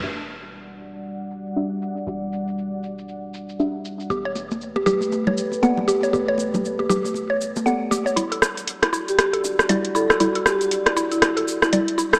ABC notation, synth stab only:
X:1
M:4/4
L:1/8
Q:"Swing 16ths" 1/4=118
K:Em
V:1 name="Synth stab"
[DFGe]6 [DFGe]2 | [DFGe]6 [DFGe]2 | [B,GAd]6 [B,GAd]2 | [B,GAd]6 [B,GAd]2 |
[G,EFd]6 [G,EFd]2 | [G,EFd]6 [G,EFd]2 |]